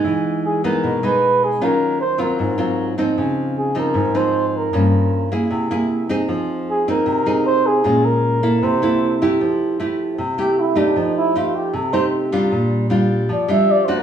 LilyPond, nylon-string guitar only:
\new Staff \with { instrumentName = "Nylon-string guitar" } { \time 4/4 \key c \phrygian \tempo 4 = 154 << { <aes b dis'>4. <gis b dis'>4 <gis b dis'>4. | <ges des' f'>4 r8 <ges c' f'>4 <ges c' f'>4 <f c' ees'>8~ | <f c' ees'>4. <f c' ees'>4 <f c' ees'>4. | <f bes des'>4. <bes fes' aes'>4 <bes e' aes'>4 <c' ees' aes'>8~ |
<c' ees' aes'>4. <c' ees' aes'>4 <c' ees' aes'>4. | <aes des' f'>4. <bes fes' a'>4 <bes e' a'>4 <a e' g'>8~ | \key f \major <a e' g'>4 <a e' g'>4 r8 <a e' g'>4 <a ees' g'>8~ | <a ees' g'>4 <a ees' g'>4 r8 <a ees' g'>4 <g d' f'>8~ |
<g d' f'>4 <g d' f'>4 r8 <g d' f'>4 <a d' ges'>8 | } \\ { e2 b,2 | ees2 aes,2 | des2 aes,2 | g,2 c2 |
f2 c2 | bes,2 c2 | f2 c2 | f2 c2 |
bes,2 f2 | } >> }